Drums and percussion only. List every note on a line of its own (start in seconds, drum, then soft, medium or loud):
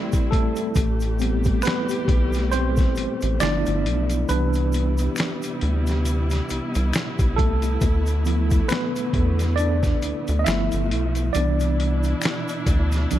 0.12 kick medium
0.12 closed hi-hat medium
0.12 shaker soft
0.32 kick loud
0.32 closed hi-hat medium
0.56 closed hi-hat soft
0.56 shaker medium
0.75 kick loud
0.75 closed hi-hat medium
0.75 shaker medium
1.00 closed hi-hat soft
1.00 shaker soft
1.19 closed hi-hat medium
1.19 shaker soft
1.44 kick medium
1.44 closed hi-hat soft
1.44 shaker soft
1.62 finger snap medium
1.62 closed hi-hat medium
1.62 shaker medium
1.67 snare loud
1.89 closed hi-hat medium
1.89 shaker soft
2.08 kick loud
2.08 closed hi-hat medium
2.33 closed hi-hat soft
2.33 shaker soft
2.37 snare soft
2.52 closed hi-hat medium
2.52 shaker medium
2.77 kick medium
2.77 snare soft
2.77 closed hi-hat soft
2.77 shaker soft
2.96 closed hi-hat medium
2.96 shaker soft
3.21 closed hi-hat medium
3.21 shaker soft
3.40 finger snap medium
3.40 snare medium
3.40 closed hi-hat medium
3.40 shaker medium
3.66 closed hi-hat soft
3.66 shaker soft
3.86 closed hi-hat medium
4.09 closed hi-hat soft
4.09 shaker soft
4.29 closed hi-hat medium
4.29 shaker medium
4.53 closed hi-hat soft
4.53 shaker soft
4.73 closed hi-hat medium
4.73 shaker soft
4.98 closed hi-hat soft
4.98 shaker soft
5.16 finger snap medium
5.16 snare loud
5.16 closed hi-hat medium
5.16 shaker medium
5.42 closed hi-hat soft
5.42 shaker soft
5.61 closed hi-hat medium
5.87 snare soft
5.87 closed hi-hat soft
5.87 shaker soft
6.05 closed hi-hat medium
6.05 shaker medium
6.30 snare soft
6.30 closed hi-hat soft
6.30 shaker soft
6.49 closed hi-hat medium
6.49 shaker soft
6.75 closed hi-hat medium
6.75 shaker soft
6.93 finger snap medium
6.93 snare loud
6.93 closed hi-hat medium
6.93 shaker medium
7.19 kick medium
7.19 closed hi-hat soft
7.19 shaker soft
7.38 kick medium
7.38 closed hi-hat medium
7.62 closed hi-hat soft
7.62 shaker soft
7.81 kick loud
7.81 closed hi-hat medium
7.81 shaker medium
8.06 closed hi-hat soft
8.06 shaker soft
8.25 closed hi-hat medium
8.25 shaker soft
8.51 kick medium
8.51 closed hi-hat soft
8.51 shaker soft
8.69 finger snap medium
8.69 snare loud
8.69 closed hi-hat medium
8.69 shaker medium
8.96 closed hi-hat soft
8.96 shaker soft
9.13 kick medium
9.13 closed hi-hat medium
9.39 snare soft
9.39 closed hi-hat soft
9.39 shaker soft
9.57 closed hi-hat medium
9.57 shaker medium
9.83 kick medium
9.83 snare soft
9.83 closed hi-hat soft
9.83 shaker soft
10.02 closed hi-hat medium
10.02 shaker soft
10.28 closed hi-hat medium
10.28 shaker soft
10.46 finger snap medium
10.46 snare loud
10.46 closed hi-hat medium
10.46 shaker medium
10.72 closed hi-hat soft
10.72 shaker soft
10.91 closed hi-hat medium
11.15 closed hi-hat soft
11.15 shaker soft
11.34 closed hi-hat medium
11.34 shaker medium
11.60 closed hi-hat soft
11.60 shaker soft
11.80 closed hi-hat medium
12.03 closed hi-hat soft
12.03 shaker soft
12.22 finger snap medium
12.22 snare loud
12.22 closed hi-hat medium
12.22 shaker medium
12.48 closed hi-hat medium
12.48 shaker soft
12.66 kick loud
12.66 closed hi-hat medium
12.66 shaker soft
12.92 snare soft
12.92 closed hi-hat soft
12.92 shaker soft
13.11 closed hi-hat medium
13.11 shaker medium